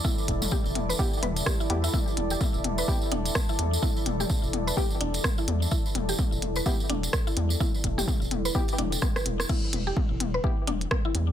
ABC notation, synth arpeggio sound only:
X:1
M:4/4
L:1/16
Q:"Swing 16ths" 1/4=127
K:Em
V:1 name="Synth arpeggio sound"
E z3 G z2 B z2 B z G E z E | E z2 G z3 B z2 D z2 E z2 | E z2 G z3 B z2 D z2 E z2 | E z2 G z3 B z2 D z2 E z2 |
E z2 G z3 B z2 D z2 B z2 | E z2 G z3 B z2 D z2 E z2 |]